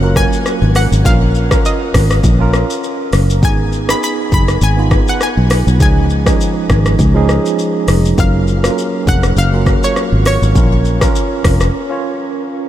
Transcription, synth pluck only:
Already playing: F#5
0.17 G#5
0.76 F#5
1.06 F5
1.66 D#5
3.45 G#5
3.90 B5
4.04 B5
4.34 B5
4.63 G#5
5.09 F#5
5.23 G#5
5.82 G#5
8.20 F5
9.09 F#5
9.38 F5
9.84 C#5
10.27 C#5

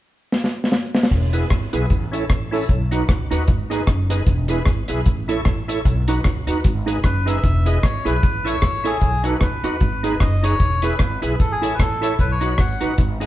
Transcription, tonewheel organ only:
1.33 B3 E4 G#4
1.50 E4 G#4
1.73 B3 E4 G#4
2.12 C#4 E4 A4
2.51 C#4 E4 A4
2.91 D#4 F#4 B4
3.09 F#4 B4
3.31 D#4 F#4 B4
3.70 D#4 G#4 B4
4.10 D#4 G#4 B4
4.50 E4 G#4 B4
4.67 G#4 B4
4.88 E4 G#4 B4
5.28 E4 A4 C#5
5.68 E4 A4 C#5
6.08 D#4 F#4 B4
6.25 F#4 B4
6.47 D#4 F#4 B4
6.87 D#4 G#4 B4
7.26 D#4 G#4 B4
7.66 E4 G#4 B4
8.05 E4 G#4 B4
8.45 E4 A4 C#5
8.84 E4 A4 C#5
9.24 D#4 F#4 B4
9.64 D#4 F#4 B4
10.03 D#4 G#4 B4
10.43 D#4 G#4 B4
10.82 E4 G#4 B4
11.22 E4 G#4 B4
11.62 E4 A4 C#5
12.02 E4 A4 C#5
12.41 D#4 F#4 B4
12.81 D#4 F#4 B4
13.20 D#4 G#4 B4

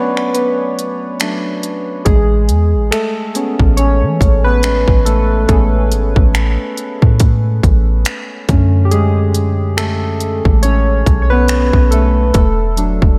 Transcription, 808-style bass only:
2.06 A1
2.49 E2
2.74 A1
3.60 A1
4.03 E3
4.21 A1
4.88 A1
5.49 A1
5.92 G#1
6.17 A1
7.02 A2
7.64 A1
8.49 F#2
10.45 A1
11.07 B1
11.74 B1
12.35 E1
13.02 E1

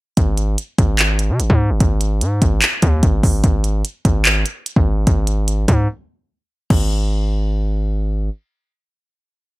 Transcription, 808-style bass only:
0.17 G#1
0.78 G#1
1.29 C3
1.40 G#1
1.50 G#2
1.70 G1
1.80 G#1
2.21 G#2
2.42 G#1
2.83 D#2
3.03 G#1
3.23 G#1
3.44 G#1
4.05 G#1
4.76 G#1
5.07 G#1
5.68 G#2
6.70 G#1

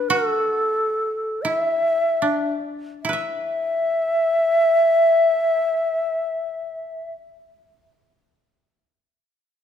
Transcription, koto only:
Already playing: D4 E4
0.10 F#4
1.45 E4
2.22 D4
3.05 E4
3.09 B4
3.13 E5

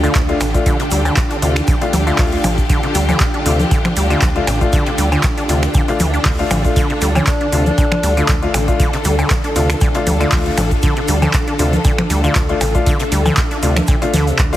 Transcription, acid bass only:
0.03 D3
0.15 F3
0.41 C3
0.66 D3
0.80 C3
0.91 G3
1.05 D3
1.31 D4
1.42 C3
1.56 F3
1.68 D3
1.82 C3
1.93 G3
2.07 D3
2.19 F3
2.44 C3
2.69 D3
2.83 C3
2.95 G3
3.09 D3
3.20 D3
3.34 D4
3.46 C3
3.59 F3
3.71 D3
3.85 C3
3.96 G3
4.10 D3
4.22 F3
4.47 C3
4.73 D3
4.87 C3
4.98 G3
5.12 D3
5.37 D4
5.49 C3
5.63 F3
5.75 D3
5.88 C3
6.00 E3
6.14 D4
6.25 D3
6.51 D3
6.76 D3
6.90 C3
7.02 G3
7.15 D3
7.27 D3
7.41 D4
7.52 C3
7.66 F3
7.78 D3
7.92 C3
8.03 G3
8.17 D3
8.29 F3
8.54 C3
8.80 D3
8.93 C3
9.05 G3
9.19 D3
9.30 D3
9.44 D4
9.56 C3
9.70 F3
9.81 D3
9.95 C3
10.07 G3
10.20 D3
10.32 F3
10.58 C3
10.83 D3
10.97 C3
11.08 G3
11.22 D3
11.34 D3
11.48 D4
11.59 C3
11.73 F3
11.85 D3
11.98 C3
12.10 G3
12.24 D3
12.36 F3
12.61 C3
12.86 D3
13.00 C3
13.12 G3
13.26 D3
13.51 D4
13.63 C3
13.76 F3
13.88 D3
14.02 C3
14.14 D3
14.27 C3
14.39 D3

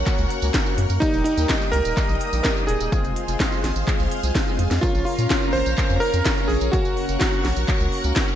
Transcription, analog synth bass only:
0.18 C#2
0.42 C#2
0.78 F#2
0.90 F#2
1.14 D#1
1.37 D#2
1.73 C#2
1.85 D#1
2.09 A#1
2.33 A#1
2.68 D#1
2.80 D#1
3.04 F1
3.28 F1
3.64 G#1
3.75 G#1
3.99 C2
4.23 C2
4.59 F2
4.71 F2
4.94 A#1
5.18 A#2
5.54 G#1
5.66 A#1
5.90 F2
6.14 F2
6.49 A#1
6.61 A#1
6.85 F#1
7.09 F#1
7.45 A#1
7.57 A#1
7.80 C#2
8.04 C#2

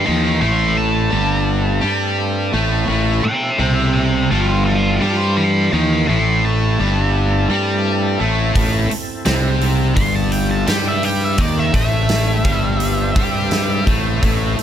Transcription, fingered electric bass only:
0.08 D#2
0.42 A1
1.13 G1
1.84 G2
2.54 A1
2.88 A1
3.25 muted fingered electric bass stroke
3.59 C2
4.31 G1
5.02 G2
5.73 D#2
6.09 A1
6.79 G1
7.49 G2
8.21 A1
8.56 A1
8.91 muted fingered electric bass stroke
9.27 C2
9.97 G1
10.68 G2
11.38 D#2
11.74 A1
12.45 G1
13.16 G2
13.87 A1
14.23 A1
14.59 muted fingered electric bass stroke

